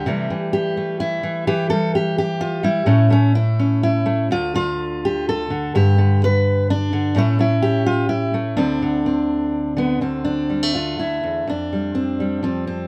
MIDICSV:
0, 0, Header, 1, 2, 480
1, 0, Start_track
1, 0, Tempo, 473186
1, 55, Time_signature, 3, 2, 24, 8
1, 9175, Tempo, 483871
1, 12973, End_track
2, 0, Start_track
2, 0, Title_t, "Steel-string acoustic guitar"
2, 0, Program_c, 0, 25
2, 0, Note_on_c, 0, 67, 88
2, 62, Note_on_c, 0, 48, 70
2, 70, Note_on_c, 0, 52, 51
2, 76, Note_on_c, 0, 55, 48
2, 84, Note_on_c, 0, 57, 51
2, 297, Note_off_c, 0, 48, 0
2, 304, Note_off_c, 0, 52, 0
2, 308, Note_on_c, 0, 52, 56
2, 526, Note_off_c, 0, 67, 0
2, 538, Note_on_c, 0, 67, 91
2, 771, Note_off_c, 0, 57, 0
2, 783, Note_on_c, 0, 57, 49
2, 1011, Note_off_c, 0, 67, 0
2, 1015, Note_on_c, 0, 64, 94
2, 1248, Note_off_c, 0, 52, 0
2, 1252, Note_on_c, 0, 52, 66
2, 1488, Note_off_c, 0, 64, 0
2, 1491, Note_off_c, 0, 57, 0
2, 1493, Note_off_c, 0, 52, 0
2, 1493, Note_on_c, 0, 52, 81
2, 1495, Note_on_c, 0, 67, 102
2, 1718, Note_off_c, 0, 67, 0
2, 1722, Note_on_c, 0, 69, 100
2, 1723, Note_off_c, 0, 55, 0
2, 1735, Note_on_c, 0, 55, 62
2, 1962, Note_off_c, 0, 69, 0
2, 1979, Note_on_c, 0, 67, 89
2, 2203, Note_off_c, 0, 67, 0
2, 2215, Note_on_c, 0, 67, 94
2, 2442, Note_on_c, 0, 65, 97
2, 2658, Note_off_c, 0, 55, 0
2, 2670, Note_on_c, 0, 55, 68
2, 2677, Note_off_c, 0, 65, 0
2, 2681, Note_on_c, 0, 64, 91
2, 2886, Note_off_c, 0, 55, 0
2, 2895, Note_off_c, 0, 52, 0
2, 2902, Note_on_c, 0, 45, 78
2, 2905, Note_on_c, 0, 57, 53
2, 2912, Note_on_c, 0, 61, 55
2, 2926, Note_off_c, 0, 67, 0
2, 3143, Note_off_c, 0, 57, 0
2, 3147, Note_on_c, 0, 57, 64
2, 3157, Note_off_c, 0, 61, 0
2, 3161, Note_off_c, 0, 64, 0
2, 3169, Note_on_c, 0, 61, 81
2, 3396, Note_off_c, 0, 61, 0
2, 3400, Note_on_c, 0, 64, 88
2, 3646, Note_on_c, 0, 61, 51
2, 3876, Note_off_c, 0, 64, 0
2, 3889, Note_on_c, 0, 64, 90
2, 4103, Note_off_c, 0, 57, 0
2, 4115, Note_on_c, 0, 57, 60
2, 4336, Note_off_c, 0, 57, 0
2, 4345, Note_off_c, 0, 61, 0
2, 4364, Note_off_c, 0, 45, 0
2, 4370, Note_on_c, 0, 38, 75
2, 4374, Note_off_c, 0, 64, 0
2, 4380, Note_on_c, 0, 65, 97
2, 4608, Note_off_c, 0, 65, 0
2, 4610, Note_on_c, 0, 50, 52
2, 4621, Note_on_c, 0, 65, 99
2, 5123, Note_on_c, 0, 67, 87
2, 5355, Note_off_c, 0, 67, 0
2, 5364, Note_on_c, 0, 69, 102
2, 5570, Note_off_c, 0, 50, 0
2, 5582, Note_on_c, 0, 50, 64
2, 5588, Note_off_c, 0, 65, 0
2, 5826, Note_off_c, 0, 38, 0
2, 5831, Note_on_c, 0, 43, 78
2, 5834, Note_off_c, 0, 69, 0
2, 5838, Note_on_c, 0, 67, 103
2, 6057, Note_off_c, 0, 50, 0
2, 6069, Note_on_c, 0, 50, 58
2, 6313, Note_off_c, 0, 67, 0
2, 6330, Note_on_c, 0, 71, 110
2, 6795, Note_off_c, 0, 71, 0
2, 6799, Note_on_c, 0, 62, 91
2, 7016, Note_off_c, 0, 50, 0
2, 7028, Note_on_c, 0, 50, 65
2, 7235, Note_off_c, 0, 43, 0
2, 7260, Note_on_c, 0, 45, 77
2, 7264, Note_off_c, 0, 50, 0
2, 7268, Note_off_c, 0, 62, 0
2, 7272, Note_on_c, 0, 57, 57
2, 7282, Note_on_c, 0, 61, 51
2, 7288, Note_on_c, 0, 64, 108
2, 7491, Note_off_c, 0, 57, 0
2, 7495, Note_on_c, 0, 57, 60
2, 7499, Note_off_c, 0, 64, 0
2, 7511, Note_on_c, 0, 64, 91
2, 7734, Note_on_c, 0, 67, 98
2, 7973, Note_off_c, 0, 64, 0
2, 7977, Note_on_c, 0, 65, 94
2, 8203, Note_off_c, 0, 65, 0
2, 8207, Note_on_c, 0, 64, 94
2, 8452, Note_off_c, 0, 67, 0
2, 8455, Note_off_c, 0, 57, 0
2, 8459, Note_on_c, 0, 57, 62
2, 8676, Note_off_c, 0, 61, 0
2, 8689, Note_on_c, 0, 38, 80
2, 8690, Note_off_c, 0, 64, 0
2, 8691, Note_on_c, 0, 62, 83
2, 8693, Note_off_c, 0, 45, 0
2, 8699, Note_off_c, 0, 57, 0
2, 8703, Note_on_c, 0, 50, 52
2, 8708, Note_on_c, 0, 60, 57
2, 8938, Note_off_c, 0, 50, 0
2, 8951, Note_on_c, 0, 50, 54
2, 9180, Note_off_c, 0, 60, 0
2, 9191, Note_on_c, 0, 60, 44
2, 9878, Note_off_c, 0, 50, 0
2, 9890, Note_on_c, 0, 50, 59
2, 9906, Note_on_c, 0, 59, 78
2, 10115, Note_off_c, 0, 60, 0
2, 10122, Note_off_c, 0, 38, 0
2, 10133, Note_off_c, 0, 62, 0
2, 10134, Note_on_c, 0, 38, 55
2, 10137, Note_off_c, 0, 59, 0
2, 10141, Note_on_c, 0, 60, 67
2, 10366, Note_on_c, 0, 62, 64
2, 10615, Note_on_c, 0, 55, 36
2, 10744, Note_off_c, 0, 55, 0
2, 10744, Note_on_c, 0, 57, 30
2, 10855, Note_off_c, 0, 62, 0
2, 10863, Note_on_c, 0, 65, 62
2, 10864, Note_off_c, 0, 60, 0
2, 11092, Note_off_c, 0, 38, 0
2, 11102, Note_off_c, 0, 65, 0
2, 11103, Note_on_c, 0, 38, 46
2, 11108, Note_on_c, 0, 64, 64
2, 11342, Note_off_c, 0, 38, 0
2, 11346, Note_on_c, 0, 40, 46
2, 11581, Note_off_c, 0, 40, 0
2, 11581, Note_off_c, 0, 50, 0
2, 11582, Note_off_c, 0, 57, 0
2, 11582, Note_off_c, 0, 64, 0
2, 11585, Note_on_c, 0, 41, 62
2, 11606, Note_on_c, 0, 62, 71
2, 11835, Note_on_c, 0, 55, 36
2, 12054, Note_on_c, 0, 60, 64
2, 12302, Note_off_c, 0, 55, 0
2, 12306, Note_on_c, 0, 55, 41
2, 12529, Note_off_c, 0, 60, 0
2, 12529, Note_on_c, 0, 53, 47
2, 12541, Note_on_c, 0, 60, 70
2, 12548, Note_off_c, 0, 62, 0
2, 12763, Note_off_c, 0, 60, 0
2, 12775, Note_on_c, 0, 60, 67
2, 12973, Note_off_c, 0, 41, 0
2, 12973, Note_off_c, 0, 53, 0
2, 12973, Note_off_c, 0, 55, 0
2, 12973, Note_off_c, 0, 60, 0
2, 12973, End_track
0, 0, End_of_file